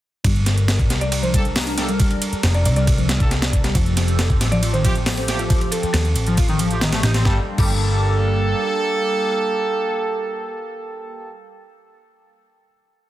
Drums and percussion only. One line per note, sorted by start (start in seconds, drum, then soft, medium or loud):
0.24 kick loud
0.24 closed hi-hat soft
0.24 ride medium
0.36 closed hi-hat soft
0.46 snare soft
0.46 closed hi-hat medium
0.46 ride medium
0.58 closed hi-hat soft
0.68 snare loud
0.68 closed hi-hat soft
0.68 ride medium
0.79 kick medium
0.79 closed hi-hat soft
0.90 snare soft
0.90 closed hi-hat medium
0.90 ride medium
1.01 closed hi-hat soft
1.12 closed hi-hat soft
1.12 ride medium
1.23 closed hi-hat soft
1.34 kick medium
1.34 closed hi-hat medium
1.34 ride medium
1.45 closed hi-hat soft
1.56 snare loud
1.56 closed hi-hat soft
1.56 open hi-hat medium
1.67 closed hi-hat soft
1.67 ride soft
1.78 snare soft
1.78 closed hi-hat medium
1.78 ride medium
1.89 closed hi-hat soft
2.00 kick loud
2.00 closed hi-hat soft
2.00 ride medium
2.11 closed hi-hat soft
2.11 ride soft
2.22 closed hi-hat medium
2.22 ride medium
2.33 closed hi-hat soft
2.43 snare loud
2.43 closed hi-hat soft
2.43 ride medium
2.54 closed hi-hat soft
2.65 closed hi-hat medium
2.65 ride medium
2.76 closed hi-hat soft
2.87 kick loud
2.87 closed hi-hat soft
2.87 ride medium
2.98 closed hi-hat soft
3.09 snare loud
3.09 closed hi-hat medium
3.09 ride medium
3.20 kick medium
3.20 closed hi-hat soft
3.31 snare soft
3.31 closed hi-hat soft
3.31 ride medium
3.42 snare loud
3.42 closed hi-hat soft
3.42 ride medium
3.53 kick medium
3.53 closed hi-hat medium
3.64 snare soft
3.64 closed hi-hat soft
3.64 ride medium
3.75 kick loud
3.75 closed hi-hat soft
3.75 ride medium
3.86 closed hi-hat soft
3.97 snare soft
3.97 closed hi-hat medium
3.97 ride medium
4.08 closed hi-hat soft
4.19 snare loud
4.19 closed hi-hat soft
4.19 ride medium
4.30 kick medium
4.30 closed hi-hat soft
4.41 snare medium
4.41 closed hi-hat medium
4.41 ride medium
4.52 closed hi-hat soft
4.63 closed hi-hat soft
4.63 ride medium
4.74 closed hi-hat soft
4.85 kick medium
4.85 closed hi-hat medium
4.85 ride medium
4.95 closed hi-hat soft
5.06 snare loud
5.06 closed hi-hat soft
5.06 open hi-hat medium
5.17 closed hi-hat soft
5.17 ride soft
5.28 snare soft
5.28 closed hi-hat medium
5.28 ride medium
5.39 closed hi-hat soft
5.50 kick loud
5.50 closed hi-hat soft
5.50 ride medium
5.61 closed hi-hat soft
5.61 ride soft
5.72 closed hi-hat medium
5.72 ride medium
5.83 closed hi-hat soft
5.94 snare loud
5.94 closed hi-hat soft
5.94 ride medium
6.05 closed hi-hat soft
6.16 closed hi-hat medium
6.16 ride medium
6.26 closed hi-hat soft
6.37 kick loud
6.37 closed hi-hat soft
6.37 ride medium
6.48 closed hi-hat soft
6.59 closed hi-hat medium
6.59 ride medium
6.71 closed hi-hat soft
6.81 snare loud
6.81 closed hi-hat soft
6.81 ride medium
6.92 snare loud
6.92 closed hi-hat soft
6.92 ride medium
7.03 snare loud
7.03 closed hi-hat medium
7.03 ride medium
7.14 snare loud
7.14 closed hi-hat soft
7.14 ride medium
7.25 kick loud
7.25 snare medium
7.58 kick loud
7.58 crash medium